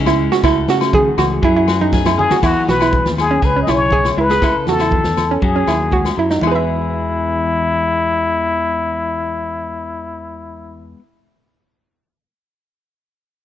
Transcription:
Already playing: fingered electric bass C#2, clean electric guitar C#3 C#4 E4 G#4
0.06 synth pluck E4, snare, low agogo
0.19 clean electric guitar G#3
0.32 synth pluck F#4, snare
0.44 fingered electric bass C#2, clean electric guitar C#3 A3 C#4 F#4 A4, synth pluck E4, kick, snare, muted conga, low agogo
0.68 fingered electric bass C#3, clean electric guitar C#4, synth pluck F#4, snare
0.81 snare, low agogo
0.93 clean electric guitar D#3, synth pluck G#4, kick, high conga
1.18 fingered electric bass C#2, clean electric guitar E3, synth pluck F#4, snare, muted conga, low conga, low agogo
1.42 fingered electric bass F#2, clean electric guitar F#3 G#4, synth pluck E4, kick, muted conga, high conga
1.56 synth pluck E4
1.68 clean electric guitar F#4, snare, muted conga, low agogo
1.81 synth pluck D#4, high conga
1.92 clean electric guitar G#4, kick, snare, high conga
2.05 synth pluck E4, snare, high conga, low agogo
2.18 clean electric guitar C#4, muted trumpet G#4, low conga
2.30 synth pluck F#4, snare, low conga
2.41 fingered electric bass E2, clean electric guitar E3 B3, synth pluck E4, muted trumpet F#4, kick, snare, crash, muted conga, low agogo
2.68 fingered electric bass B1, synth pluck F#4, muted trumpet B4, snare, muted conga, high conga
2.81 synth pluck E4, snare, low agogo
2.92 clean electric guitar E3, kick, high conga
3.05 fingered electric bass D#2, snare
3.17 clean electric guitar D#3, muted trumpet G#4, snare, low agogo
3.31 synth pluck C#4
3.42 fingered electric bass C#2, clean electric guitar C#3 G#4, muted trumpet B4, kick, snare, muted conga
3.56 synth pluck C#4
3.63 muted trumpet D#5
3.67 fingered electric bass B1, synth pluck E4, muted trumpet C#5, snare, low agogo
3.91 clean electric guitar E4, synth pluck G#4, kick, high conga
4.05 snare, low agogo
4.16 fingered electric bass C#2, clean electric guitar G#3, synth pluck E4, muted conga
4.20 muted trumpet B4
4.29 synth pluck G#4, snare
4.42 fingered electric bass C#2, clean electric guitar C#3 A4, synth pluck E4, kick, snare, muted conga, low agogo
4.67 fingered electric bass E2, synth pluck F#4, muted trumpet A4, snare, muted conga, high conga
4.79 synth pluck E4, snare, low agogo
4.91 clean electric guitar D#3, kick, high conga
5.04 fingered electric bass E2, snare
5.17 muted clean electric guitar stroke, snare, low conga, low agogo
5.31 synth pluck C#4
5.42 fingered electric bass F#2, clean electric guitar F#3 C#4 F#4, muted trumpet G#4, kick, muted conga, high conga
5.56 synth pluck C#4
5.67 fingered electric bass D#2, synth pluck E4, snare, low agogo
5.92 clean electric guitar G#3, synth pluck F#4, kick, high conga
6.05 snare, low agogo
6.17 fingered electric bass F#2, clean electric guitar F#3, synth pluck E4, muted conga
6.30 synth pluck D#4, snare
6.41 fingered electric bass E2, clean electric guitar E3 G#3, muted trumpet E4, synth pluck E4, muted conga, low agogo
6.46 clean electric guitar B3 F#4, synth pluck G#4
6.50 clean electric guitar G#4, synth pluck B4
6.55 synth pluck E5

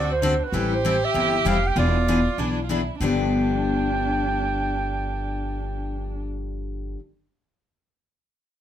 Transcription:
Already playing: upright bass D2, steel-string acoustic guitar D3 A3 C4 F#4 A4, violin F#4, clarinet D5
0.12 clarinet C5
0.22 steel-string acoustic guitar D3 A3 C4 F#4 A4, violin D4
0.44 clarinet B4
0.49 upright bass A1, violin F#4
0.53 steel-string acoustic guitar E3 G3 C4 E4 A4, violin G4
0.75 clarinet C5
0.85 steel-string acoustic guitar E3 G3 C4 E4 A4
1.05 clarinet E5
1.14 upright bass G1, steel-string acoustic guitar E3 G3 C4 E4 A4
1.45 upright bass F1, steel-string acoustic guitar E3 G3 C4 E4 A4, clarinet F5
1.67 clarinet G5
1.76 upright bass E1, steel-string acoustic guitar E3 B3 D4 G#4, violin F4, clarinet D5
2.08 steel-string acoustic guitar E3 B3 D4 G#4
2.38 upright bass B1, steel-string acoustic guitar E3 B3 D4 G#4, violin D4
2.64 violin F4
2.69 steel-string acoustic guitar E3 B3 D4 G#4, violin E4
3.00 upright bass G1, steel-string acoustic guitar G2 D3 F3 B3 D4 G4, violin D4, clarinet G5

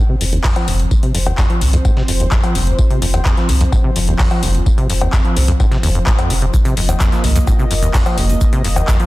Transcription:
Already playing: analog synth pad F3 C4 C5
0.09 acid bass C3
0.21 sub bass F1, acid bass F2, open hi-hat, tambourine
0.33 acid bass D#2, closed hi-hat
0.44 acid bass F2, kick, snare, clap, open hi-hat
0.56 acid bass F3, closed hi-hat, cowbell
0.68 sub bass F1, acid bass F1, open hi-hat, tambourine
0.79 acid bass F2, closed hi-hat
0.91 acid bass F2, kick, tambourine
1.03 acid bass C3, closed hi-hat
1.15 sub bass F1, acid bass F2, open hi-hat, tambourine
1.26 acid bass D#2, closed hi-hat, cowbell
1.38 acid bass F2, kick, snare, clap, tambourine
1.50 acid bass F3, closed hi-hat
1.61 acid bass F1, sub bass C2, open hi-hat, tambourine
1.73 acid bass F2, closed hi-hat
1.85 acid bass G#2, kick, tambourine, cowbell
1.97 acid bass C3, snare
2.08 sub bass F1, acid bass F2, open hi-hat, tambourine
2.20 acid bass D#2, closed hi-hat
2.32 acid bass F2, kick, snare, clap, tambourine
2.43 acid bass F3, closed hi-hat, cowbell
2.55 acid bass F1, sub bass F1, open hi-hat, tambourine
2.67 acid bass F2, closed hi-hat
2.79 acid bass F2, kick, tambourine
2.90 acid bass C3, closed hi-hat
3.02 sub bass F1, acid bass F2, open hi-hat, tambourine
3.14 acid bass D#2, closed hi-hat, cowbell
3.25 acid bass F2, kick, snare, clap, tambourine
3.37 acid bass F3, snare, closed hi-hat
3.49 acid bass F1, sub bass C2, open hi-hat, tambourine
3.61 acid bass F2, closed hi-hat
3.72 acid bass G#2, kick, tambourine, cowbell
3.84 acid bass C3
3.96 sub bass F1, acid bass F2, open hi-hat, tambourine
4.08 acid bass D#2, closed hi-hat
4.19 acid bass F2, kick, snare, clap, open hi-hat
4.31 acid bass F3, closed hi-hat, cowbell
4.43 acid bass F1, sub bass F1, open hi-hat, tambourine
4.54 acid bass F2, closed hi-hat
4.66 acid bass F2, kick, tambourine
4.78 acid bass C3, closed hi-hat
4.89 sub bass F1, acid bass F2, open hi-hat, tambourine
5.01 acid bass D#2, closed hi-hat, cowbell
5.13 acid bass F2, kick, snare, clap, tambourine
5.25 acid bass F3, closed hi-hat
5.36 acid bass F1, sub bass C2, open hi-hat, tambourine
5.48 acid bass F2, closed hi-hat
5.60 acid bass G#2, kick, tambourine, cowbell
5.71 acid bass C3, snare, closed hi-hat
5.83 sub bass F1, acid bass D#2, open hi-hat, tambourine
5.95 acid bass F2, closed hi-hat
6.06 acid bass G#2, kick, snare, clap, tambourine
6.18 acid bass F2, closed hi-hat, cowbell
6.30 sub bass F1, acid bass F3, open hi-hat, tambourine
6.42 acid bass C3, closed hi-hat
6.53 acid bass F2, analog synth pad A#3 D#5, kick, tambourine, shaker
6.65 acid bass C3, closed hi-hat, shaker
6.77 sub bass F1, acid bass F2, open hi-hat, tambourine
6.89 acid bass D#2, closed hi-hat, cowbell, shaker
7.00 acid bass F2, kick, snare, clap, tambourine, shaker
7.12 acid bass F3, snare, closed hi-hat, shaker
7.24 acid bass F1, sub bass C2, open hi-hat, tambourine
7.35 acid bass F2, closed hi-hat, shaker
7.47 acid bass G#2, kick, tambourine, cowbell, shaker
7.59 acid bass C3, shaker
7.71 sub bass F1, acid bass F2, open hi-hat, tambourine
7.82 acid bass D#2, closed hi-hat, shaker
7.94 acid bass F2, kick, snare, clap, open hi-hat, shaker
8.06 acid bass F3, closed hi-hat, cowbell, shaker
8.18 acid bass F1, sub bass F1, open hi-hat, tambourine
8.29 acid bass F2, closed hi-hat, shaker
8.41 acid bass F2, kick, tambourine, shaker
8.53 acid bass C3, closed hi-hat, shaker
8.64 sub bass F1, acid bass F2, open hi-hat, tambourine
8.76 acid bass D#2, closed hi-hat, cowbell, shaker
8.88 acid bass F2, kick, snare, clap, tambourine, shaker
9.00 acid bass F3, closed hi-hat, shaker

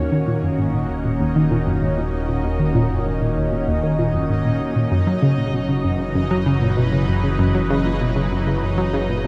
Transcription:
Already playing: analog synth bass D#1, analog synth pad D#3 A#3 C#4 F#4, synth texture D#4 D#5
0.12 synth arpeggio sound D#3
0.28 synth arpeggio sound A#2
0.43 synth arpeggio sound F#2
0.59 synth arpeggio sound G#2
0.74 synth arpeggio sound A#2
0.89 synth arpeggio sound D#2
1.05 synth arpeggio sound A#2
1.21 synth arpeggio sound D#2
1.36 synth arpeggio sound D#3
1.51 synth arpeggio sound A#2
1.67 synth arpeggio sound F#2
1.82 synth arpeggio sound G#2
1.98 synth arpeggio sound A#2
2.13 synth arpeggio sound D#2
2.29 synth arpeggio sound A#2
2.44 synth arpeggio sound D#2
2.60 synth arpeggio sound D#3
2.75 synth arpeggio sound A#2
2.90 synth arpeggio sound F#2
3.06 synth arpeggio sound G#2
3.22 synth arpeggio sound A#2
3.37 synth arpeggio sound D#2
3.52 synth arpeggio sound A#2
3.68 synth arpeggio sound D#2
3.83 synth arpeggio sound D#3
3.99 synth arpeggio sound A#2
4.14 synth arpeggio sound F#2
4.30 synth arpeggio sound G#2
4.45 synth arpeggio sound A#2
4.60 synth arpeggio sound D#2
4.76 synth arpeggio sound A#2
4.92 analog synth bass F#1, synth arpeggio sound F#2, analog synth pad F#3
5.07 synth arpeggio sound F#3
5.23 synth arpeggio sound C#3
5.38 synth arpeggio sound A#2
5.51 synth arpeggio sound B2, analog synth pad E3
5.69 synth arpeggio sound C#3
5.85 synth arpeggio sound F#2
6.00 synth arpeggio sound C#3
6.15 synth arpeggio sound F#2, analog synth pad B4
6.31 synth arpeggio sound F#3
6.46 synth arpeggio sound C#3
6.62 synth arpeggio sound A#2
6.77 synth arpeggio sound B2
6.93 synth arpeggio sound C#3
7.08 synth arpeggio sound F#2
7.24 synth arpeggio sound C#3
7.39 synth arpeggio sound F#2
7.55 synth arpeggio sound F#3
7.70 synth arpeggio sound C#3
7.85 synth arpeggio sound A#2
8.01 synth arpeggio sound B2
8.16 synth arpeggio sound C#3
8.32 synth arpeggio sound F#2
8.47 synth arpeggio sound C#3
8.63 synth arpeggio sound F#2
8.78 synth arpeggio sound F#3
8.94 synth arpeggio sound C#3
9.09 synth arpeggio sound A#2

